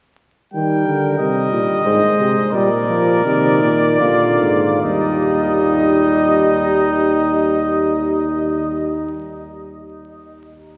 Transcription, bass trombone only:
0.55 D#3
0.87 D3
1.20 C3
1.52 A#2
1.86 G#2
2.20 C3
2.54 A#2
3.25 C3
3.62 A#2
4.01 A#2
4.41 G#2
4.83 D#2

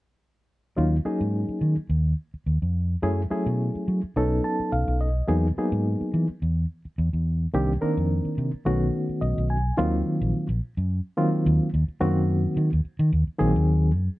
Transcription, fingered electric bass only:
0.78 D#2
1.05 muted fingered electric bass stroke
1.21 G#2
1.49 muted fingered electric bass stroke
1.61 D#3
1.77 muted fingered electric bass stroke
1.89 D#2
2.34 muted fingered electric bass stroke
2.46 D#2
2.62 F2
3.03 F#2
3.31 muted fingered electric bass stroke
3.46 B2
3.75 muted fingered electric bass stroke
3.88 F#3
4.03 muted fingered electric bass stroke
4.16 B1
4.60 muted fingered electric bass stroke
4.72 B1
4.88 B1
5.28 E2
5.57 muted fingered electric bass stroke
5.72 G#2
6.01 muted fingered electric bass stroke
6.14 E3
6.29 muted fingered electric bass stroke
6.42 E2
6.85 muted fingered electric bass stroke
6.98 E2
7.13 E2
7.54 C2
7.83 muted fingered electric bass stroke
7.97 F2
8.25 muted fingered electric bass stroke
8.38 C3
8.54 muted fingered electric bass stroke
8.66 B1
9.09 muted fingered electric bass stroke
9.22 B1
9.38 B1
9.79 D#2
10.21 A#1
10.49 A#1
10.77 F#2
11.46 D#2
11.74 D#2
11.88 muted fingered electric bass stroke
12.01 F#2
12.57 D#3
12.73 D#2
12.85 muted fingered electric bass stroke
12.99 D#3
13.13 D#2
13.27 muted fingered electric bass stroke
13.40 A#1
13.56 D#2
13.96 F#2

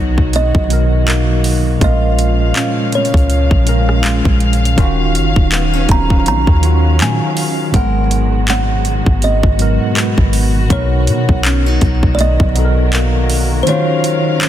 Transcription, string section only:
Already playing: B2 D#3 F#3 F#4
1.82 C#3 F3 G#3 F5
4.78 D#3 F#3 C#4
7.74 B2 G#3 F#4
10.70 D#3 F#3 A#4
13.67 C#4 F5

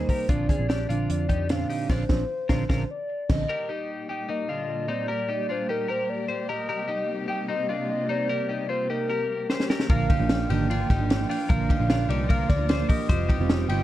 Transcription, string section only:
3.50 A#2 G3 A#3 G4
6.69 C3
9.89 A#2 F3 F4
13.11 C3 G3

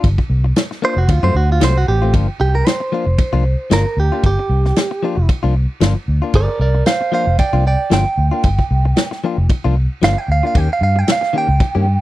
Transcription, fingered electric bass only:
0.04 G1
0.30 C2
0.96 F1
1.08 D2
1.23 F#2
1.35 D2
1.62 C2
1.88 A1
2.13 G1
2.40 C2
3.06 F1
3.33 C2
3.71 G1
3.97 D2
4.24 G1
4.49 C2
5.17 F1
5.44 C2
5.81 G1
6.08 D2
6.34 G1
6.59 C2
7.27 F1
7.53 C2
7.91 G1
8.18 D2
8.44 G1
8.71 C2
9.38 F1
9.65 C2
10.02 G1
10.28 D2
10.55 D#2
10.81 G2
11.48 C#2
11.75 G2

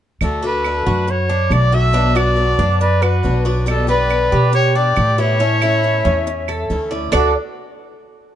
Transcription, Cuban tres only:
0.42 A4
0.86 F#4
1.29 D4
1.72 F#4
1.94 D4
2.16 F#4
2.59 D4
3.02 B4
3.46 D5
3.89 B4
4.32 G4
4.75 D4
5.18 E4
5.40 C#4
5.62 E4
6.05 C#4
6.49 A4
6.91 D5
7.12 D4 A4 D5

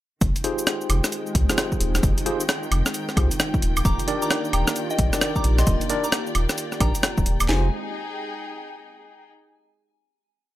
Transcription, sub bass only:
0.21 F1
0.90 F1
1.35 C2
1.80 D#1
2.03 F1
2.71 F1
3.17 C2
3.62 D#1
3.85 D#1
4.53 D#1
4.99 A#1
5.44 A#1
5.67 D#1
6.35 D#1
6.80 A#1
7.18 D#1
7.26 D#1
7.41 D#1
7.49 F1

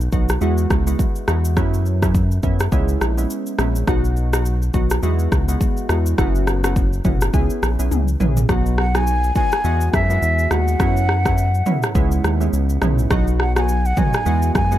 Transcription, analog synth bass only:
0.13 B1
0.41 E2
0.70 C#2
1.28 E2
1.57 F#2
2.43 F#2
2.72 C#2
3.01 A#1
3.59 A#1
3.88 B1
4.74 B1
5.03 E2
5.32 C#2
5.89 E2
6.18 F#1
7.05 F#1
7.34 C#2
7.62 A#1
7.79 B1
7.91 C#2
8.20 A#1
8.49 B1
9.64 E2
9.94 F#2
10.22 E2
10.51 D#2
10.80 F#2
11.95 C#2
12.24 D#2
12.53 C#2
12.82 B1
13.11 B1
14.26 E2
14.55 F#2

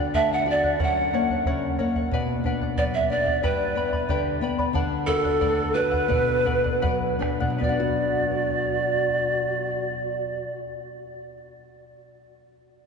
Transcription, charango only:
Already playing: F#5
0.00 D5
0.14 A4 D5 F#5
0.47 A4 D5 F#5
0.64 D5 F#5
0.79 A#4 C#5 F#5
1.13 A#4 C#5 F#5
1.30 C#5 F#5
1.46 A#4 C#5 F#5
1.79 A#4 C#5 F#5
1.96 C#5 F#5
2.13 B4 D5 F#5
2.46 B4 D5 F#5
2.61 D5 F#5
2.78 B4 D5 F#5
3.11 B4 D5 F#5
3.26 D5 F#5
3.43 G4 B4 D5 G5 B5
3.76 B4 D5 G5 B5
3.93 B4 D5 B5
4.09 G4 B4 D5 G5 B5
4.42 B4 D5 G5 B5
4.59 B4 D5 B5
4.74 A4 D5 F#5
5.07 A4 D5 F#5
5.24 D5 F#5
5.41 A4 D5 F#5
5.75 A4 D5 F#5
5.91 D5 F#5
6.09 B4 D5 F#5
6.45 B4 D5 F#5
6.64 D5 F#5
6.82 B4 D5 F#5
7.20 B4 D5 F#5
7.40 D5 F#5
7.58 B4
7.64 D5
7.69 F#5

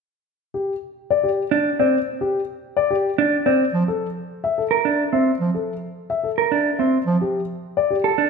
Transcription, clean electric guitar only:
1.51 D4
1.79 C4
3.18 D4
3.46 C4
4.71 A#4
4.85 D4
5.13 C4
6.38 A#4
6.52 D4
6.79 C4
8.04 A4
8.18 D4

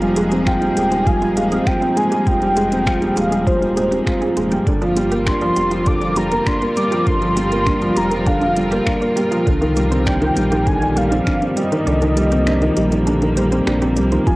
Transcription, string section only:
Already playing: F3 A#3 D#4 G#4
4.67 G3
4.83 F4
5.13 C4
6.10 A#4
9.47 F3
9.65 G3
9.95 A#3

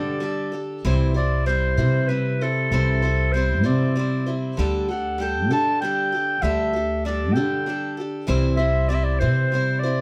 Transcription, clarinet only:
Already playing: D5
1.16 D5
1.46 C5
2.08 B4
2.42 A4
3.32 C5
3.66 D5
4.90 F#5
5.21 G5
5.52 A5
5.81 G5
6.42 E5
7.06 D5
7.33 G5
8.57 E5
8.89 D5
8.94 E5
9.04 D5
9.19 C5
9.79 D5

